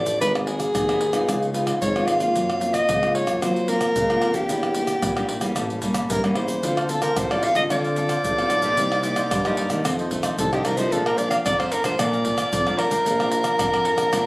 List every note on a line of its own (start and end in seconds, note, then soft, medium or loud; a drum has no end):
0.00 0.16 A1 medium
0.00 0.18 F2 medium
0.00 0.17 F3 medium
0.00 0.17 A3 medium
0.00 0.17 D4 medium
0.00 0.20 D5 medium
0.06 pandeiro medium
0.06 shaker medium
0.20 0.66 G#1 medium
0.20 0.72 G#3 soft
0.20 0.37 B3 medium
0.20 0.37 F#4 medium
0.20 0.37 A#4 medium
0.20 0.33 B4 loud
0.20 pandeiro medium
0.20 shaker medium
0.20 surdo medium
0.35 pandeiro soft
0.35 tamborim medium
0.35 shaker soft
0.46 0.83 B3 soft
0.46 0.83 F#4 soft
0.46 1.50 G#4 medium
0.46 0.83 A#4 medium
0.46 pandeiro medium
0.60 pandeiro medium
0.60 tamborim medium
0.60 shaker medium
0.74 1.08 D#2 medium
0.74 1.25 D#3 medium
0.74 pandeiro medium
0.74 tamborim medium
0.74 shaker medium
0.74 surdo loud
0.88 1.11 B3 medium
0.88 1.11 F#4 medium
0.88 1.11 A#4 medium
0.88 pandeiro soft
0.88 tamborim medium
0.88 shaker soft
1.01 pandeiro medium
1.12 1.25 G#1 medium
1.12 1.49 B3 medium
1.12 1.50 D#4 medium
1.12 1.50 F4 medium
1.12 pandeiro soft
1.12 tamborim medium
1.12 shaker medium
1.28 1.73 C#2 medium
1.28 1.79 C#3 medium
1.28 pandeiro medium
1.28 tamborim medium
1.28 shaker medium
1.28 surdo medium
1.42 pandeiro soft
1.42 shaker soft
1.53 1.79 B3 soft
1.53 1.79 D#4 soft
1.53 1.80 F4 medium
1.53 pandeiro medium
1.53 shaker medium
1.67 pandeiro medium
1.67 tamborim medium
1.67 shaker medium
1.81 2.04 G#1 medium
1.81 2.32 G#2 medium
1.81 2.09 C#5 loud
1.81 pandeiro medium
1.81 shaker medium
1.81 surdo medium
1.95 2.18 B3 medium
1.95 2.18 D#4 medium
1.95 2.18 F4 medium
1.95 pandeiro soft
1.95 tamborim medium
1.95 shaker soft
2.07 2.31 G#1 medium
2.07 2.75 F5 loud
2.07 pandeiro medium
2.07 tamborim medium
2.07 shaker medium
2.20 2.57 A#3 medium
2.20 2.57 C4 medium
2.20 2.57 F4 medium
2.20 pandeiro medium
2.20 shaker medium
2.35 2.81 F#2 loud
2.35 2.86 F#3 medium
2.35 pandeiro medium
2.35 shaker medium
2.35 surdo medium
2.50 pandeiro soft
2.50 tamborim medium
2.50 shaker soft
2.60 2.97 A#3 medium
2.60 2.97 C4 medium
2.60 2.97 F4 medium
2.60 pandeiro medium
2.60 shaker medium
2.74 3.15 D#5 loud
2.74 pandeiro medium
2.74 tamborim medium
2.74 shaker medium
2.88 3.23 C#2 medium
2.88 3.39 C#3 soft
2.88 pandeiro medium
2.88 tamborim medium
2.88 shaker medium
2.88 surdo loud
3.02 3.25 A#3 medium
3.02 3.25 C4 medium
3.02 3.25 F4 medium
3.02 pandeiro soft
3.02 tamborim medium
3.02 shaker soft
3.15 3.44 C#5 medium
3.15 pandeiro medium
3.27 3.39 F#2 medium
3.27 3.37 A#3 medium
3.27 3.37 C4 medium
3.27 3.37 F4 medium
3.27 pandeiro soft
3.27 tamborim medium
3.27 shaker medium
3.42 3.88 F#3 medium
3.42 3.93 F#3 medium
3.42 3.65 A#3 medium
3.42 3.65 C4 medium
3.42 3.65 F4 medium
3.42 3.70 C5 medium
3.42 pandeiro medium
3.42 tamborim medium
3.42 shaker medium
3.42 surdo medium
3.56 pandeiro soft
3.56 shaker soft
3.68 4.05 A#3 medium
3.68 4.05 C4 medium
3.68 4.05 F4 medium
3.68 4.37 A#4 loud
3.68 pandeiro medium
3.68 shaker medium
3.81 pandeiro medium
3.81 tamborim medium
3.81 shaker medium
3.95 4.18 C#2 medium
3.95 4.47 C#3 medium
3.95 pandeiro medium
3.95 shaker medium
3.95 surdo loud
4.10 4.32 A#3 medium
4.10 4.32 C4 medium
4.10 4.33 F4 medium
4.10 pandeiro soft
4.10 tamborim medium
4.10 shaker soft
4.21 4.44 F2 medium
4.21 pandeiro medium
4.21 tamborim medium
4.34 4.71 A#3 medium
4.34 4.71 D4 medium
4.34 5.83 G4 medium
4.34 4.71 G4 medium
4.34 pandeiro medium
4.34 shaker medium
4.49 4.95 E2 medium
4.49 5.00 E3 medium
4.49 pandeiro medium
4.49 shaker medium
4.49 surdo medium
4.63 pandeiro soft
4.63 tamborim medium
4.63 shaker soft
4.75 5.12 A#3 soft
4.75 5.12 D4 soft
4.75 5.12 G4 soft
4.75 pandeiro medium
4.75 shaker medium
4.87 pandeiro medium
4.87 tamborim medium
4.87 shaker medium
5.02 5.37 A#2 medium
5.02 5.41 E3 medium
5.02 pandeiro medium
5.02 tamborim medium
5.02 shaker medium
5.02 surdo loud
5.17 5.39 A#3 medium
5.17 5.39 D4 medium
5.17 5.40 G4 medium
5.17 pandeiro soft
5.17 tamborim medium
5.17 shaker soft
5.29 pandeiro medium
5.41 5.53 E2 medium
5.41 5.78 G3 medium
5.41 5.78 A#3 medium
5.41 5.79 C#4 medium
5.41 pandeiro medium
5.41 tamborim medium
5.41 shaker medium
5.56 5.79 A1 medium
5.56 6.08 A2 medium
5.56 pandeiro medium
5.56 tamborim medium
5.56 shaker medium
5.56 surdo medium
5.70 pandeiro soft
5.70 shaker soft
5.82 6.08 G3 medium
5.82 6.08 A#3 medium
5.82 6.08 C#4 medium
5.82 pandeiro medium
5.82 shaker medium
5.82 surdo medium
5.94 pandeiro medium
5.94 tamborim medium
5.94 shaker medium
6.10 6.34 G2 medium
6.10 6.61 E3 medium
6.10 6.22 A#4 medium
6.10 pandeiro medium
6.10 shaker medium
6.10 surdo loud
6.24 6.60 G3 medium
6.24 6.60 A#3 medium
6.24 6.60 C#4 medium
6.24 pandeiro soft
6.24 tamborim medium
6.24 shaker soft
6.35 6.60 E2 medium
6.35 6.92 C5 medium
6.35 pandeiro medium
6.35 tamborim medium
6.48 pandeiro medium
6.48 shaker medium
6.63 7.09 D2 medium
6.63 7.14 D3 medium
6.63 6.79 C4 medium
6.63 6.76 D4 soft
6.63 6.80 F4 medium
6.63 6.76 A4 soft
6.63 6.80 A4 medium
6.63 6.76 C5 soft
6.63 6.76 F5 soft
6.63 pandeiro medium
6.63 shaker medium
6.63 surdo medium
6.77 6.88 A4 medium
6.77 6.88 C5 medium
6.77 6.88 F5 medium
6.77 pandeiro soft
6.77 tamborim medium
6.77 shaker soft
6.89 7.26 C4 soft
6.89 7.26 F4 soft
6.89 7.02 A4 medium
6.89 7.26 A4 medium
6.89 muted cavaquinho stroke soft
6.89 pandeiro medium
6.89 shaker medium
7.01 7.16 A4 medium
7.01 7.20 A#4 medium
7.01 7.15 C5 medium
7.01 7.15 F5 medium
7.01 pandeiro medium
7.01 tamborim medium
7.01 shaker medium
7.16 7.51 A1 medium
7.16 7.68 A2 medium
7.16 7.29 D4 soft
7.16 7.30 A4 soft
7.16 7.30 C5 medium
7.16 7.33 C5 medium
7.16 7.29 F5 medium
7.16 pandeiro medium
7.16 tamborim medium
7.16 shaker medium
7.16 surdo loud
7.31 7.54 C4 medium
7.31 7.54 F4 medium
7.31 7.42 A4 medium
7.31 7.54 A4 medium
7.31 7.43 C5 medium
7.31 7.45 D5 medium
7.31 7.43 F5 medium
7.31 pandeiro soft
7.31 tamborim medium
7.31 shaker soft
7.42 7.69 D4 medium
7.42 7.69 A4 medium
7.42 7.70 C5 medium
7.42 7.56 F5 loud
7.42 7.70 F5 medium
7.42 pandeiro medium
7.55 7.68 D2 medium
7.55 7.66 C4 medium
7.55 7.66 F4 medium
7.55 7.66 A4 medium
7.55 7.62 D#5 medium
7.55 pandeiro medium
7.55 tamborim medium
7.55 shaker medium
7.70 8.16 D3 medium
7.70 8.22 D3 medium
7.70 7.86 C4 medium
7.70 7.83 D4 soft
7.70 7.87 F4 medium
7.70 7.83 A4 medium
7.70 7.87 A4 medium
7.70 7.83 C5 medium
7.70 10.08 D5 loud
7.70 7.84 F5 medium
7.70 pandeiro medium
7.70 tamborim medium
7.70 shaker medium
7.70 surdo medium
7.84 7.96 A4 medium
7.84 7.97 C5 medium
7.84 7.97 F5 medium
7.84 pandeiro soft
7.84 shaker soft
7.96 8.33 C4 medium
7.96 8.33 F4 soft
7.96 8.33 A4 medium
7.96 muted cavaquinho stroke soft
7.96 pandeiro medium
7.96 shaker medium
8.09 8.36 A4 medium
8.09 8.36 C5 medium
8.09 8.36 F5 medium
8.09 pandeiro medium
8.09 tamborim medium
8.09 shaker medium
8.24 8.47 A1 loud
8.24 8.75 A2 medium
8.24 pandeiro medium
8.24 shaker medium
8.24 surdo loud
8.38 8.60 C4 medium
8.38 8.61 F4 medium
8.38 8.61 A4 medium
8.38 8.50 A4 medium
8.38 8.50 C5 medium
8.38 8.50 F5 medium
8.38 pandeiro soft
8.38 tamborim medium
8.38 shaker soft
8.50 8.73 B1 medium
8.50 8.63 D4 medium
8.50 8.63 A4 soft
8.50 8.62 C5 soft
8.50 8.61 F5 medium
8.50 pandeiro medium
8.50 tamborim medium
8.50 shaker medium
8.62 8.99 A#3 medium
8.62 9.00 D#4 medium
8.62 9.00 G4 medium
8.62 8.76 A4 medium
8.62 8.76 C5 medium
8.62 8.76 F5 medium
8.62 pandeiro medium
8.62 shaker medium
8.77 9.23 C2 medium
8.77 9.29 C3 medium
8.77 8.90 D#4 soft
8.77 8.90 A#4 soft
8.77 8.90 C5 medium
8.77 8.90 D#5 medium
8.77 pandeiro medium
8.77 shaker medium
8.77 surdo medium
8.91 9.03 A#4 medium
8.91 9.03 C5 medium
8.91 9.03 D#5 medium
8.91 pandeiro soft
8.91 tamborim medium
8.91 shaker soft
9.03 9.29 A#3 medium
9.03 9.30 D#4 soft
9.03 9.30 G4 soft
9.03 pandeiro medium
9.03 shaker medium
9.16 9.30 A#4 medium
9.16 9.30 C5 medium
9.16 9.29 D#5 medium
9.16 pandeiro medium
9.16 tamborim medium
9.16 shaker medium
9.31 9.65 G2 medium
9.31 9.82 G2 medium
9.31 9.43 D#4 medium
9.31 9.44 A#4 medium
9.31 9.44 C5 soft
9.31 9.44 D#5 medium
9.31 pandeiro medium
9.31 tamborim medium
9.31 shaker medium
9.31 surdo loud
9.45 9.68 A#3 medium
9.45 9.68 D#4 medium
9.45 9.68 G4 medium
9.45 9.57 A#4 medium
9.45 9.57 C5 medium
9.45 9.57 D#5 medium
9.45 pandeiro soft
9.45 tamborim medium
9.45 shaker soft
9.57 9.83 D#4 medium
9.57 9.84 A#4 medium
9.57 9.84 C5 medium
9.57 9.84 D#5 medium
9.57 pandeiro medium
9.70 9.82 D#2 medium
9.70 10.07 D#3 medium
9.70 10.07 A3 medium
9.70 10.07 D4 medium
9.70 pandeiro medium
9.70 tamborim medium
9.70 shaker medium
9.85 10.30 F2 medium
9.85 10.36 F2 medium
9.85 9.97 F4 medium
9.85 9.98 A4 medium
9.85 9.98 C5 medium
9.85 9.98 D#5 medium
9.85 pandeiro medium
9.85 tamborim medium
9.85 shaker medium
9.85 surdo medium
9.99 10.10 A4 medium
9.99 10.11 C5 medium
9.99 10.11 D#5 medium
9.99 pandeiro soft
9.99 shaker soft
10.11 10.47 D#3 medium
10.11 10.47 A3 medium
10.11 10.48 D4 medium
10.11 muted cavaquinho stroke soft
10.11 pandeiro medium
10.11 shaker medium
10.11 surdo medium
10.23 10.51 A4 medium
10.23 10.50 C5 medium
10.23 10.50 D#5 medium
10.23 pandeiro medium
10.23 tamborim medium
10.23 shaker medium
10.38 10.61 C2 medium
10.38 10.90 C3 medium
10.38 10.51 A4 medium
10.38 pandeiro medium
10.38 shaker medium
10.38 surdo medium
10.52 10.75 D#3 medium
10.52 10.75 A3 medium
10.52 10.75 D4 medium
10.52 10.66 G4 medium
10.52 10.64 A4 medium
10.52 10.65 C5 medium
10.52 10.64 D#5 medium
10.52 pandeiro soft
10.52 tamborim medium
10.52 shaker soft
10.64 10.87 C2 medium
10.64 10.77 F4 soft
10.64 10.78 A4 soft
10.64 10.78 A#4 medium
10.64 10.77 C5 soft
10.64 10.76 D#5 soft
10.64 pandeiro medium
10.64 tamborim medium
10.64 shaker medium
10.77 11.14 F3 medium
10.77 11.14 A3 medium
10.77 11.14 D4 medium
10.77 10.91 A4 medium
10.77 10.93 C5 medium
10.77 10.91 C5 medium
10.77 10.90 D#5 medium
10.77 pandeiro medium
10.77 shaker medium
10.92 11.37 A#1 loud
10.92 11.43 A#2 medium
10.92 11.05 A4 medium
10.92 11.04 A4 medium
10.92 11.05 D5 medium
10.92 11.05 F5 medium
10.92 11.05 A#5 medium
10.92 pandeiro medium
10.92 shaker medium
10.92 surdo medium
11.06 11.19 A#4 medium
11.06 11.18 D5 medium
11.06 11.18 F5 medium
11.06 11.18 A#5 medium
11.06 pandeiro soft
11.06 tamborim medium
11.06 shaker soft
11.18 11.44 F3 medium
11.18 11.44 A3 soft
11.18 11.44 D4 medium
11.18 11.30 D5 loud
11.18 muted cavaquinho stroke soft
11.18 pandeiro medium
11.18 shaker medium
11.30 11.44 D5 soft
11.30 11.37 F5 medium
11.30 11.44 F5 medium
11.30 11.43 A#5 medium
11.30 pandeiro medium
11.30 tamborim medium
11.30 shaker medium
11.45 11.79 F2 medium
11.45 11.58 A4 medium
11.45 11.61 D5 loud
11.45 11.58 D5 medium
11.45 11.58 F5 medium
11.45 11.58 A#5 medium
11.45 pandeiro medium
11.45 tamborim medium
11.45 shaker medium
11.45 surdo loud
11.60 11.82 F3 medium
11.60 11.82 A3 medium
11.60 11.82 D4 medium
11.60 11.74 C5 medium
11.60 11.70 D5 medium
11.60 11.71 F5 medium
11.60 11.71 A#5 medium
11.60 pandeiro soft
11.60 tamborim medium
11.60 shaker soft
11.71 11.97 A4 medium
11.71 11.84 A#4 medium
11.71 11.98 D5 medium
11.71 11.98 F5 medium
11.71 11.98 A#5 medium
11.71 pandeiro medium
11.71 shaker medium
11.83 11.96 A#1 medium
11.83 11.94 F3 medium
11.83 11.94 A3 medium
11.83 11.95 D4 medium
11.83 12.01 C5 loud
11.83 pandeiro medium
11.83 tamborim medium
11.83 shaker medium
11.98 12.44 A#2 medium
11.98 12.50 A#2 medium
11.98 12.15 F3 medium
11.98 12.15 A3 medium
11.98 12.15 D4 medium
11.98 12.11 A4 medium
11.98 12.11 D5 medium
11.98 12.80 D5 loud
11.98 12.12 F5 medium
11.98 12.12 A#5 medium
11.98 pandeiro medium
11.98 tamborim medium
11.98 shaker medium
11.98 surdo medium
12.13 12.24 D5 medium
12.13 12.25 F5 medium
12.13 12.25 A#5 medium
12.13 pandeiro soft
12.13 shaker soft
12.25 12.61 F3 medium
12.25 12.62 A3 medium
12.25 12.62 D4 medium
12.25 muted cavaquinho stroke soft
12.25 pandeiro medium
12.25 shaker medium
12.25 surdo medium
12.37 12.65 D5 medium
12.37 12.64 F5 medium
12.37 12.64 A#5 medium
12.37 pandeiro medium
12.37 tamborim medium
12.37 shaker medium
12.52 12.75 F2 medium
12.52 13.03 F2 medium
12.52 pandeiro medium
12.52 shaker medium
12.52 surdo loud
12.66 12.89 F3 medium
12.66 12.89 A3 medium
12.66 12.89 D4 medium
12.66 12.78 D5 medium
12.66 12.78 F5 medium
12.66 12.78 A#5 medium
12.66 pandeiro soft
12.66 tamborim medium
12.66 shaker soft
12.78 12.91 A4 soft
12.78 14.26 A#4 loud
12.78 12.91 D5 medium
12.78 12.90 F5 soft
12.78 12.89 A#5 medium
12.78 pandeiro medium
12.78 tamborim medium
12.90 13.01 F3 medium
12.90 13.01 A3 medium
12.90 13.01 D4 medium
12.90 13.05 D5 medium
12.90 13.04 F5 medium
12.90 13.04 A#5 medium
12.90 pandeiro medium
12.90 shaker medium
13.06 13.51 A#1 loud
13.06 13.57 A#2 soft
13.06 13.18 A4 soft
13.06 13.19 D5 medium
13.06 13.19 F5 medium
13.06 13.18 A#5 medium
13.06 pandeiro medium
13.06 shaker medium
13.06 surdo medium
13.20 13.56 F3 medium
13.20 13.56 D4 medium
13.20 13.31 D5 medium
13.20 13.31 F5 medium
13.20 13.31 A#5 medium
13.20 pandeiro soft
13.20 tamborim medium
13.20 shaker soft
13.31 muted cavaquinho stroke soft
13.31 pandeiro medium
13.31 shaker medium
13.43 13.58 D5 soft
13.43 13.57 F5 medium
13.43 13.57 A#5 medium
13.43 pandeiro medium
13.43 tamborim medium
13.43 shaker medium
13.58 13.93 F2 medium
13.58 14.10 F2 medium
13.58 14.09 F3 medium
13.58 14.09 D4 medium
13.58 13.71 A4 soft
13.58 13.72 D5 medium
13.58 13.72 F5 soft
13.58 13.71 A#5 medium
13.58 pandeiro medium
13.58 tamborim medium
13.58 shaker medium
13.58 surdo loud
13.72 13.84 D5 soft
13.72 13.84 F5 medium
13.72 13.85 A#5 medium
13.72 pandeiro soft
13.72 tamborim medium
13.72 shaker soft
13.84 14.11 A4 medium
13.84 14.11 D5 medium
13.84 14.11 F5 medium
13.84 14.12 A#5 medium
13.84 pandeiro medium
13.97 14.09 A#1 medium
13.97 pandeiro soft
13.97 tamborim medium
13.97 shaker medium
14.12 14.26 A#2 medium
14.12 14.26 F3 medium
14.12 14.26 A3 medium
14.12 14.26 D4 medium
14.12 14.25 A4 soft
14.12 14.25 D5 medium
14.12 14.25 F5 medium
14.12 14.25 A#5 medium
14.12 pandeiro medium
14.12 tamborim medium
14.12 shaker medium
14.12 surdo medium